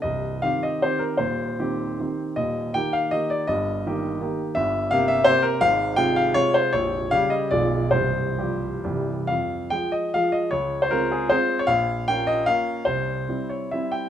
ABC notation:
X:1
M:3/4
L:1/16
Q:1/4=154
K:Cm
V:1 name="Grand piano"
e4 f2 e2 c2 B2 | c8- c2 z2 | e4 g2 f2 e2 d2 | e8- e2 z2 |
[K:Fm] =e4 f2 e2 c2 B2 | f4 g2 f2 d2 c2 | d4 f2 e2 =d4 | c8 z4 |
f4 g2 e2 f2 e2 | d3 c B2 A2 c3 d | f4 g2 e2 f4 | c6 d2 =e2 g2 |]
V:2 name="Grand piano" clef=bass
[C,,,C,,]4 [E,CG]4 [E,CG]4 | [E,,,E,,]4 [E,CG]4 [E,CG]4 | [E,,,E,,]4 [E,B,G]4 [E,B,G]4 | [G,,,G,,]4 [E,B,G]4 [E,B,G]4 |
[K:Fm] [G,,,G,,]4 [C,B,G]4 [C,B,G]4 | [A,,,A,,]4 [C,A,F]4 [C,A,F]4 | [B,,,,B,,,]4 [D,G,G]4 [=B,,,,=B,,,F,^G,F]4 | [C,,,C,,]4 [F,G,G]4 [C,,,C,,=E,G,G]4 |
F,,4 [F,A,F]4 [F,A,F]4 | D,,4 [A,CF]4 [A,CF]4 | B,,,4 [B,DF]4 [B,DF]4 | C,,4 [G,C=E]4 [G,CE]4 |]